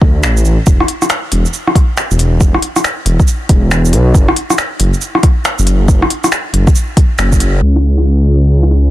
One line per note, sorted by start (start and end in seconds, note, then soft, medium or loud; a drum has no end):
0.01 0.25 D2 loud
0.01 kick loud
0.23 0.44 A1 medium
0.23 finger snap loud
0.23 shaker medium
0.37 shaker medium
0.45 0.58 A1 medium
0.45 shaker soft
0.67 0.79 E1 medium
0.67 kick loud
0.67 shaker medium
0.80 cross-stick medium
0.88 open hi-hat medium
1.02 cross-stick soft
1.02 shaker medium
1.10 finger snap loud
1.10 shaker medium
1.32 1.45 E1 medium
1.32 open hi-hat medium
1.46 shaker soft
1.54 shaker medium
1.67 cross-stick soft
1.75 kick loud
1.75 cross-stick soft
1.75 open hi-hat medium
1.97 finger snap loud
1.97 shaker medium
2.11 2.40 E1 medium
2.11 shaker medium
2.19 open hi-hat medium
2.19 shaker soft
2.40 2.53 E1 medium
2.40 kick loud
2.40 shaker medium
2.54 cross-stick medium
2.62 open hi-hat medium
2.76 cross-stick medium
2.76 shaker medium
2.84 finger snap loud
2.84 shaker medium
3.05 3.18 E1 medium
3.05 open hi-hat medium
3.20 kick loud
3.20 shaker soft
3.28 shaker medium
3.49 3.94 E1 loud
3.49 kick loud
3.49 open hi-hat medium
3.71 finger snap loud
3.71 shaker medium
3.85 shaker medium
3.93 4.13 B1 loud
3.93 open hi-hat medium
3.93 shaker soft
4.14 4.27 F#1 medium
4.14 kick loud
4.14 shaker medium
4.28 cross-stick medium
4.36 open hi-hat medium
4.50 cross-stick medium
4.50 shaker medium
4.58 finger snap loud
4.58 shaker medium
4.80 4.92 F#1 medium
4.80 open hi-hat medium
4.94 shaker soft
5.01 shaker medium
5.15 cross-stick medium
5.23 kick loud
5.23 cross-stick soft
5.23 open hi-hat medium
5.45 finger snap loud
5.45 shaker medium
5.59 5.87 F#1 medium
5.59 shaker medium
5.67 open hi-hat medium
5.67 shaker soft
5.88 6.01 F#1 medium
5.88 kick loud
5.88 shaker medium
6.02 cross-stick medium
6.10 open hi-hat medium
6.24 cross-stick medium
6.24 shaker medium
6.32 finger snap loud
6.32 shaker medium
6.53 6.66 F#1 loud
6.53 open hi-hat medium
6.67 kick loud
6.67 shaker soft
6.75 shaker medium
6.97 kick loud
6.97 open hi-hat medium
7.18 7.61 F#1 loud
7.18 finger snap loud
7.18 shaker medium
7.32 kick medium
7.32 shaker medium
7.40 open hi-hat medium
7.40 shaker soft
7.62 8.90 C#2 medium
7.76 cross-stick medium
7.98 cross-stick soft
8.63 cross-stick soft
8.71 cross-stick soft